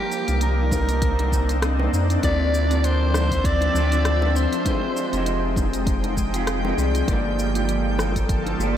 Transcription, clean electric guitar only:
2.21 C4 E4 F4 A4 D5
2.67 C4 E4 F4
2.73 A4 D5
3.71 C4 F4
3.76 A4 D5
4.64 C4 F4 G4 G#4 D#5
5.10 C4 F4 G4
5.15 G#4 D#5
6.33 C4 F4 G4 G#4 F5
6.63 C4 F4 G4 G#4 D#5
6.77 C4 F4 G4 G#4 D5
7.07 A#3 F4 G4 A4 D5
7.52 A#3 F4 G4
7.58 A4 D5
8.56 A#3 F4 G4
8.62 A4 D5

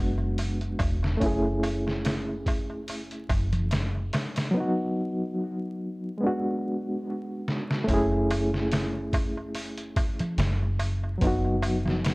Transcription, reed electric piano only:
Already playing: G#3 B3 D4 F#4
1.17 A3 C#4
1.23 E4 G#4
4.51 F#3 B3
4.57 D#4 F#4
6.18 G#3 B3
6.24 D4 F#4
7.84 A3 C#4
7.91 E4 G#4
11.18 F#3 B3
11.24 D#4 F#4

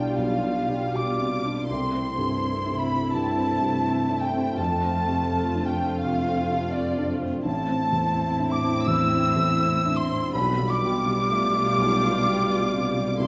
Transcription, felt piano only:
Already playing: B1 B2 D4 E4
0.19 B1
0.43 B2
0.70 D4
0.94 B2
1.19 C3
1.45 D4
1.70 C2
1.94 C4
2.18 G2
2.42 C4
2.66 D4
2.89 C4
3.14 G2
3.37 C4
3.61 G2
3.86 C4
4.09 D4
4.33 C4
4.57 F2
4.82 C4
5.07 C3
5.31 C4
5.55 D4
5.79 C4
6.03 C3
6.27 C4
6.50 C3
6.74 C4
6.98 D4
7.22 C4
7.45 A1
7.69 C4
7.93 E2
8.15 C4
8.39 D4
8.63 C4
8.87 E2
9.11 C4
9.37 E2
9.61 C4
9.86 D4
10.10 C4
10.35 B1
10.58 G3
10.83 B2
11.06 G3
11.30 A3
11.54 G3
11.78 B1
12.02 B2
12.26 G3
12.50 B2
12.73 C3
12.97 G3
13.20 C2

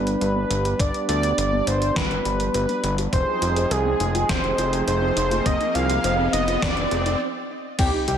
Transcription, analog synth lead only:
Already playing: B4
0.21 B4
0.80 D5
1.09 D5
1.67 C5
1.96 B4
2.54 B4
3.13 C5
3.71 G#4
4.29 C5
4.88 C5
5.46 D#5
5.74 F5
6.33 D#5
6.62 D5
7.79 G4
8.08 G4

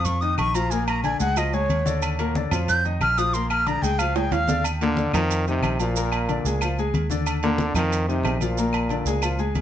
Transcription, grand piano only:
Already playing: F3 F4 F5
0.22 D#3 D#4 D#5
0.55 F3 F4 F5
0.71 A#2 A#3 A#4
1.04 D3 D4 D5
1.20 G#3 G#4 G#5
1.36 F3 F4 F5
1.53 G#3 G#4 G#5
1.85 D3 D4 D5
2.19 A#2 A#3 A#4
2.36 D3 D4 D5
2.52 F3 F4 F5
2.85 D#3 D#4 D#5
3.18 F3 F4 F5
3.34 A#2 A#3 A#4
3.67 D3 D4 D5
3.83 G#3 G#4 G#5
4.00 F3 F4 F5
4.16 G#3 G#4 G#5
4.49 D3 D4 D5
4.81 A#2 A#3 A#4
4.98 D3 D4 D5
5.14 F3 F4 F5
5.47 D#3 D#4 D#5
5.80 F3 F4 F5
5.96 A#2 A#3 A#4
6.29 D3 D4 D5
6.46 G#3 G#4 G#5
6.62 F3 F4 F5
6.79 G#3 G#4 G#5
7.11 D3 D4 D5
7.43 A#2 A#3 A#4
7.59 D3 D4 D5
7.76 F3 F4 F5
8.08 D#3 D#4 D#5
8.42 F3 F4 F5
8.58 A#2 A#3 A#4
8.90 D3 D4 D5
9.07 G#3 G#4 G#5
9.23 F3 F4 F5
9.39 G#3 G#4 G#5

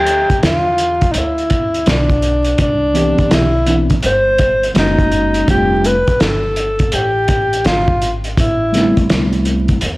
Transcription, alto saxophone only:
Already playing: G4
0.45 F4
1.12 D#4
1.17 E4
1.89 D4
2.61 D4
3.34 E4
4.06 C5
4.78 D#4
5.50 G4
5.86 B4
6.21 A4
6.94 G4
7.66 F4
8.39 E4

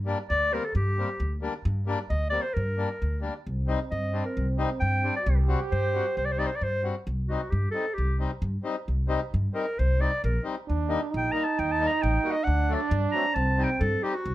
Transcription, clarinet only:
0.30 D5
0.54 A#4
0.65 A4
0.76 G4
2.10 D#5
2.30 D5
2.42 C5
2.54 A#4
3.91 D#5
4.25 A#4
4.80 G5
5.16 D5
5.71 C5
6.17 C5
6.25 D5
6.32 C5
6.39 D5
6.47 C5
6.55 D5
6.63 C5
7.28 F#4
7.50 G4
7.71 A4
7.94 G4
9.54 A#4
9.79 C5
10.01 D5
10.24 A#4
11.17 G5
11.32 A#5
11.44 A5
11.59 G5
11.72 A5
11.87 A#5
12.02 G5
12.32 D#5
12.44 F#5
12.74 D5
13.11 A#5
13.35 A5
13.63 G5
13.80 A4
14.03 G4
14.14 F#4

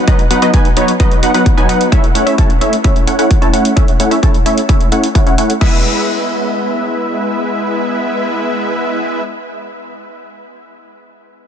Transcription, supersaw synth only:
0.07 F#3 B3 D#4 B4 D#5
0.31 F#3 B3 D#4 B4 F#5
0.42 F#3 B3 D#4 B4 D#5
0.54 F#3 B3 D#4 B4 G#5
0.77 F#3 B3 D#4 B4 C#5
1.00 F#3 B3 D#4 B4 D#5
1.23 F#3 B3 D#4 B4 F#5
1.34 F#3 B3 D#4 B4 F#5
1.57 F#3 B3 D#4 B4 G#5
1.69 F#3 B3 D#4 B4 F#5
1.92 A3 C#4 E4 C#5 E5
2.15 A3 C#4 E4 C#5 F#5
2.27 A3 C#4 E4 C#5 E5
2.38 A3 C#4 E4 C#5 A5
2.61 A3 C#4 E4 C#5 E5
2.84 A3 C#4 E4 C#5 E5
3.07 A3 C#4 E4 C#5 F#5
3.19 A3 C#4 E4 C#5 F#5
3.42 A3 C#4 E4 C#5 A5
3.53 A3 C#4 E4 C#5 F#5
3.76 A3 C#4 E4 C#5 E5
4.00 A3 C#4 E4 C#5 F#5
4.11 A3 C#4 E4 C#5 E5
4.23 A3 C#4 E4 C#5 A5
4.46 A3 C#4 E4 C#5 E5
4.69 A3 C#4 E4 C#5 E5
4.92 A3 C#4 E4 C#5 F#5
5.15 A3 C#4 E4 C#5 F#5
5.27 A3 C#4 E4 C#5 F#5
5.38 A3 C#4 E4 C#5 F#5
5.61 G#3 B3 E4 B4 E5

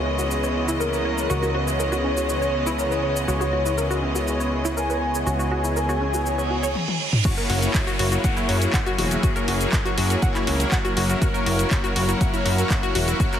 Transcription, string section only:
Already playing: C#3 E3 G#3 B3 D#5
7.25 F#3 C#4 E4 G#4 A#4
11.22 F#4

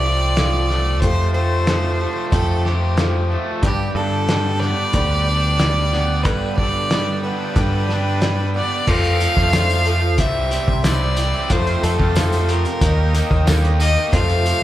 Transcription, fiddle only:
Already playing: D5
1.01 C5
1.34 C5
2.33 A4
2.65 G4
3.65 G4
3.96 A4
4.60 D5
6.23 B4
6.56 D5
7.22 B4
8.57 D5
8.89 F5
10.20 E5
10.86 D5
11.52 C5
11.84 A4
12.50 A#4
13.80 D#5
14.14 F5

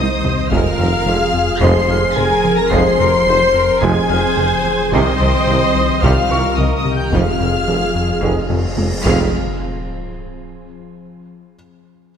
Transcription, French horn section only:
Already playing: D#4
0.53 F4
1.62 C5
2.17 G#4
2.58 A#4
2.73 C5
3.81 G#4
4.93 C4
6.04 F4
6.59 D#4
6.78 D#4
6.94 G4
7.13 F4
9.06 F4

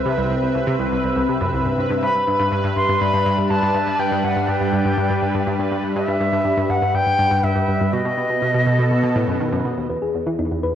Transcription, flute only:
2.02 B5
2.76 C6
3.01 B5
3.50 A5
4.00 G5
4.24 F#5
4.49 G5
5.96 E5
6.70 F#5
6.95 G5
7.44 E5
7.93 D#5

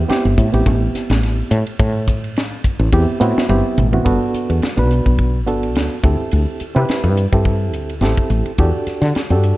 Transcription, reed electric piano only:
0.09 B3 C4 E4 G4
0.52 B3 C4 E4 G4
2.92 B3 C4 E4 G4
3.20 B3 C4 E4 F#4
3.49 B3 C4 E4 G4
3.92 B3 C4 E4 F#4
4.05 B3 D4 F#4 A4
4.77 B3 D4 F#4 B4
5.47 B3 D4 F#4 A4
6.03 C4 E4 G4 A4
6.75 C4 E4 G4 B4
7.32 C4 E4 G4 A4
8.02 C4 E4 G4 A4
8.58 D4 F#4 G4 A4
9.30 D4 F#4 G4 A4

